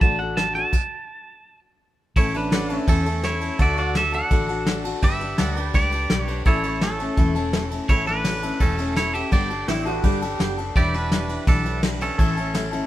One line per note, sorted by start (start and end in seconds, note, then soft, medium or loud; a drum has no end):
0.00 0.63 A1 medium
0.00 0.19 D3 medium
0.00 0.19 A3 medium
0.00 0.20 D4 medium
0.00 0.19 F#4 medium
0.00 0.72 A4 medium
0.00 0.18 A4 medium
0.00 0.72 D5 medium
0.00 0.73 F#5 medium
0.00 0.19 A5 medium
0.00 kick loud
0.00 closed hi-hat medium
0.19 0.37 D4 medium
0.19 0.38 F#4 soft
0.19 0.37 A4 medium
0.19 0.36 F#5 medium
0.37 0.55 A3 medium
0.37 0.56 D4 medium
0.37 0.55 F#4 medium
0.37 0.53 A4 medium
0.37 0.54 A5 medium
0.37 snare loud
0.37 closed hi-hat medium
0.55 0.74 D4 soft
0.55 0.74 F#4 soft
0.55 0.73 A4 medium
0.55 1.59 A5 loud
0.55 closed hi-hat medium
0.73 kick loud
0.73 crash medium
2.16 2.78 A1 medium
2.16 2.34 A2 medium
2.16 2.35 E3 medium
2.16 2.35 A3 medium
2.16 2.35 C#4 medium
2.16 2.33 E4 medium
2.16 2.34 E4 medium
2.16 2.33 A4 medium
2.16 2.35 C#5 loud
2.16 kick loud
2.16 ride medium
2.34 2.50 A3 soft
2.34 2.51 C#4 soft
2.34 2.85 D4 medium
2.34 2.52 E4 medium
2.34 2.52 A4 medium
2.34 2.89 B4 medium
2.34 ride medium
2.51 2.70 A3 medium
2.51 2.70 C#4 medium
2.51 2.69 E4 medium
2.51 3.58 A4 medium
2.51 2.68 A4 medium
2.51 2.73 D5 medium
2.51 2.79 F#5 medium
2.51 snare loud
2.51 ride medium
2.69 2.88 A3 soft
2.69 2.88 C#4 medium
2.69 2.88 E4 medium
2.69 2.87 A4 medium
2.69 3.59 C#5 medium
2.69 ride medium
2.79 3.59 E5 medium
2.88 3.49 E2 medium
2.88 3.06 A2 medium
2.88 3.06 E3 medium
2.88 3.06 A3 medium
2.88 3.21 C#4 medium
2.88 3.06 C#4 medium
2.88 3.06 E4 medium
2.88 3.25 A4 medium
2.88 3.04 A4 medium
2.88 kick loud
2.88 ride medium
3.06 3.22 A3 medium
3.06 3.24 C#4 medium
3.06 3.24 E4 medium
3.06 3.24 A4 medium
3.06 ride medium
3.23 3.41 A3 medium
3.23 3.42 C#4 medium
3.23 3.58 E4 medium
3.23 3.41 E4 medium
3.23 3.39 A4 medium
3.23 3.57 C#5 loud
3.23 snare medium
3.23 ride medium
3.41 3.58 A3 soft
3.41 3.59 C#4 soft
3.41 3.60 E4 medium
3.41 3.59 A4 soft
3.41 ride medium
3.59 4.21 D2 loud
3.59 3.77 D3 medium
3.59 3.77 A3 medium
3.59 3.77 D4 medium
3.59 3.77 F#4 medium
3.59 5.01 A4 medium
3.59 3.76 A4 medium
3.59 3.80 C#5 medium
3.59 3.77 D5 loud
3.59 3.86 E5 medium
3.59 kick loud
3.59 ride medium
3.77 3.94 D4 soft
3.77 3.94 F#4 medium
3.77 3.95 F#4 soft
3.77 3.95 A4 medium
3.77 3.96 D5 medium
3.77 5.02 D5 medium
3.77 ride medium
3.86 5.02 F#5 medium
3.94 4.13 A3 medium
3.94 4.13 D4 medium
3.94 4.13 F#4 medium
3.94 4.11 A4 medium
3.94 4.13 A4 medium
3.94 4.14 E5 loud
3.94 snare loud
3.94 ride medium
4.12 4.30 D4 soft
4.12 4.31 F#4 medium
4.12 4.31 A4 medium
4.12 4.82 A4 loud
4.12 4.81 F#5 loud
4.12 ride medium
4.30 4.92 A1 medium
4.30 4.49 D3 medium
4.30 4.49 A3 medium
4.30 4.49 D4 medium
4.30 4.48 F#4 medium
4.30 4.47 A4 medium
4.30 kick loud
4.30 ride medium
4.48 4.66 D4 soft
4.48 4.66 F#4 medium
4.48 4.66 A4 medium
4.48 ride medium
4.66 4.84 A3 medium
4.66 4.85 D4 medium
4.66 4.84 F#4 medium
4.66 4.83 A4 medium
4.66 snare loud
4.66 ride medium
4.84 5.02 D4 medium
4.84 5.03 F#4 medium
4.84 5.02 A4 medium
4.84 ride medium
5.02 5.33 G1 medium
5.02 5.20 G3 medium
5.02 5.21 D4 medium
5.02 5.20 G4 medium
5.02 5.71 G4 medium
5.02 5.18 B4 medium
5.02 5.58 E5 loud
5.02 kick loud
5.02 ride medium
5.19 5.38 D4 soft
5.19 5.38 G4 soft
5.19 5.38 B4 medium
5.19 ride medium
5.38 5.69 D2 medium
5.38 5.56 G3 medium
5.38 5.57 D4 medium
5.38 5.55 G4 medium
5.38 5.63 A4 medium
5.38 5.54 B4 medium
5.38 6.45 D5 medium
5.38 5.60 F#5 medium
5.38 snare loud
5.38 ride medium
5.55 5.73 D4 medium
5.55 5.74 G4 medium
5.55 5.74 B4 medium
5.55 5.75 D5 loud
5.55 ride medium
5.60 6.45 B4 medium
5.60 6.46 G5 medium
5.74 6.05 C#2 medium
5.74 5.92 G3 medium
5.74 5.92 D4 medium
5.74 5.92 G4 medium
5.74 6.43 G4 medium
5.74 5.90 B4 medium
5.74 6.22 D5 loud
5.74 kick loud
5.74 ride medium
5.91 6.10 D4 soft
5.91 6.11 G4 medium
5.91 6.10 B4 medium
5.91 ride medium
6.10 6.41 B1 medium
6.10 6.28 G3 medium
6.10 6.28 D4 medium
6.10 6.28 G4 medium
6.10 6.26 B4 medium
6.10 snare loud
6.10 ride medium
6.22 6.42 C#5 loud
6.27 6.47 D4 medium
6.27 6.46 G4 medium
6.27 6.46 B4 medium
6.27 ride medium
6.45 7.07 A1 medium
6.45 6.64 A2 medium
6.45 6.64 E3 medium
6.45 6.64 A3 medium
6.45 6.65 C#4 medium
6.45 6.80 E4 medium
6.45 6.64 E4 medium
6.45 9.30 A4 medium
6.45 6.63 A4 medium
6.45 6.83 C#5 loud
6.45 6.67 D5 medium
6.45 9.31 E5 medium
6.45 kick loud
6.45 ride medium
6.63 6.80 A3 soft
6.63 6.81 C#4 soft
6.63 6.82 E4 medium
6.63 6.82 A4 medium
6.63 9.30 C#5 medium
6.63 ride medium
6.81 6.99 A3 medium
6.81 7.00 C#4 medium
6.81 7.68 C#4 medium
6.81 7.00 E4 medium
6.81 7.68 A4 loud
6.81 6.98 A4 medium
6.81 snare loud
6.81 ride medium
7.00 7.16 A3 medium
7.00 7.17 C#4 medium
7.00 7.17 E4 medium
7.00 7.17 A4 medium
7.00 ride medium
7.17 7.79 E1 medium
7.17 7.35 A2 medium
7.17 7.35 E3 medium
7.17 7.35 A3 medium
7.17 7.36 C#4 medium
7.17 7.35 E4 medium
7.17 7.34 A4 medium
7.17 kick loud
7.17 ride medium
7.35 7.51 A3 medium
7.35 7.53 C#4 medium
7.35 7.54 E4 medium
7.35 7.53 A4 medium
7.35 ride medium
7.53 7.71 A3 medium
7.53 7.71 C#4 medium
7.53 7.71 E4 medium
7.53 7.69 A4 medium
7.53 snare loud
7.53 ride medium
7.71 7.89 A3 soft
7.71 7.89 C#4 medium
7.71 7.90 E4 soft
7.71 7.89 A4 medium
7.71 ride medium
7.89 8.51 A1 medium
7.89 8.07 A2 medium
7.89 8.07 E3 medium
7.89 8.07 A3 medium
7.89 8.07 C#4 medium
7.89 8.06 E4 medium
7.89 8.07 E4 medium
7.89 8.05 A4 medium
7.89 8.07 C#5 loud
7.89 kick loud
7.89 ride medium
8.06 8.23 A3 soft
8.06 8.24 C#4 soft
8.06 8.57 D4 medium
8.06 8.25 E4 medium
8.06 8.24 A4 medium
8.06 8.62 B4 medium
8.06 ride medium
8.24 8.43 A3 medium
8.24 8.43 C#4 medium
8.24 8.42 E4 medium
8.24 8.41 A4 medium
8.24 snare loud
8.24 ride loud
8.42 8.60 A3 soft
8.42 8.61 C#4 soft
8.42 8.61 E4 medium
8.42 8.60 A4 medium
8.42 ride medium
8.60 9.22 E1 medium
8.60 8.78 A2 medium
8.60 8.79 E3 medium
8.60 8.79 A3 medium
8.60 8.79 C#4 medium
8.60 8.95 C#4 medium
8.60 8.78 E4 medium
8.60 8.94 A4 medium
8.60 8.77 A4 medium
8.60 kick loud
8.60 ride medium
8.78 8.94 A3 soft
8.78 8.96 C#4 medium
8.78 8.97 E4 medium
8.78 8.96 A4 medium
8.78 ride medium
8.96 9.14 A3 medium
8.96 9.15 C#4 medium
8.96 9.13 E4 medium
8.96 9.14 E4 medium
8.96 9.12 A4 medium
8.96 9.14 C#5 medium
8.96 snare loud
8.96 ride medium
9.13 9.31 A3 soft
9.13 9.32 C#4 soft
9.13 9.32 E4 medium
9.13 9.31 G4 medium
9.13 9.32 A4 medium
9.13 9.32 E5 medium
9.13 ride medium
9.32 9.63 G1 loud
9.32 9.50 G3 medium
9.32 9.50 B3 medium
9.32 9.50 D4 medium
9.32 9.49 G4 medium
9.32 9.66 G4 medium
9.32 9.48 A4 medium
9.32 9.66 D5 medium
9.32 kick loud
9.32 ride medium
9.49 9.67 D4 medium
9.49 9.68 G4 soft
9.49 9.67 A4 medium
9.49 ride medium
9.67 9.98 A1 medium
9.67 9.85 B3 medium
9.67 9.86 D4 medium
9.67 9.86 E4 medium
9.67 10.74 G4 medium
9.67 9.85 G4 medium
9.67 9.84 A4 medium
9.67 9.95 C#5 medium
9.67 9.95 E5 medium
9.67 snare loud
9.67 ride medium
9.85 10.04 D4 medium
9.85 10.04 F#4 medium
9.85 10.04 G4 medium
9.85 10.03 A4 medium
9.85 ride medium
9.95 10.75 B4 medium
9.95 10.76 D5 medium
10.04 10.34 G1 medium
10.04 10.22 G3 medium
10.04 10.22 B3 medium
10.04 10.22 D4 medium
10.04 10.22 G4 medium
10.04 10.20 A4 loud
10.04 kick loud
10.04 ride medium
10.22 10.39 D4 medium
10.22 10.40 G4 medium
10.22 10.40 A4 medium
10.22 ride medium
10.39 10.70 F#1 medium
10.39 10.57 B3 medium
10.39 10.58 D4 medium
10.39 10.58 G4 medium
10.39 10.56 A4 medium
10.39 snare loud
10.39 ride medium
10.57 10.76 D4 soft
10.57 10.76 G4 medium
10.57 10.75 A4 medium
10.57 ride medium
10.76 11.37 E1 medium
10.76 10.94 E3 medium
10.76 10.94 G3 medium
10.76 10.94 D4 medium
10.76 10.94 E4 medium
10.76 12.18 G4 medium
10.76 10.93 G4 medium
10.76 12.18 B4 medium
10.76 10.92 B4 medium
10.76 10.95 D5 loud
10.76 12.19 E5 medium
10.76 kick loud
10.76 ride medium
10.94 11.44 D4 medium
10.94 11.11 D4 soft
10.94 11.12 E4 medium
10.94 11.11 B4 medium
10.94 11.49 B4 medium
10.94 ride medium
11.11 11.29 G3 medium
11.11 11.30 D4 medium
11.11 11.29 E4 medium
11.11 11.28 B4 medium
11.11 snare loud
11.11 ride medium
11.29 11.47 D4 soft
11.29 11.48 E4 soft
11.29 11.47 B4 medium
11.29 ride medium
11.47 12.08 B1 medium
11.47 11.65 E3 medium
11.47 11.66 G3 medium
11.47 11.81 D4 medium
11.47 11.66 D4 medium
11.47 11.65 E4 medium
11.47 11.81 A4 loud
11.47 11.64 B4 medium
11.47 kick loud
11.47 ride medium
11.65 11.83 D4 soft
11.65 11.83 E4 medium
11.65 11.83 B4 medium
11.65 ride medium
11.83 12.01 G3 medium
11.83 12.01 D4 medium
11.83 12.01 E4 medium
11.83 12.00 B4 medium
11.83 snare loud
11.83 ride medium
12.01 12.87 C#4 medium
12.01 12.19 D4 soft
12.01 12.19 E4 soft
12.01 12.87 A4 medium
12.01 12.19 B4 medium
12.01 ride medium
12.18 12.80 A1 loud
12.18 12.37 A2 medium
12.18 12.37 E3 medium
12.18 12.37 A3 medium
12.18 12.37 C#4 medium
12.18 12.37 E4 medium
12.18 12.87 A4 medium
12.18 12.35 A4 medium
12.18 12.87 C#5 medium
12.18 12.87 E5 medium
12.18 kick loud
12.18 ride loud
12.37 12.52 A3 soft
12.37 12.53 C#4 medium
12.37 12.55 E4 medium
12.37 12.55 A4 medium
12.37 ride medium
12.54 12.72 A3 medium
12.54 12.72 C#4 medium
12.54 12.71 E4 medium
12.54 12.70 A4 medium
12.54 snare loud
12.54 ride medium
12.71 12.87 A3 medium
12.71 12.87 C#4 medium
12.71 12.87 E4 medium
12.71 12.87 A4 medium
12.71 ride medium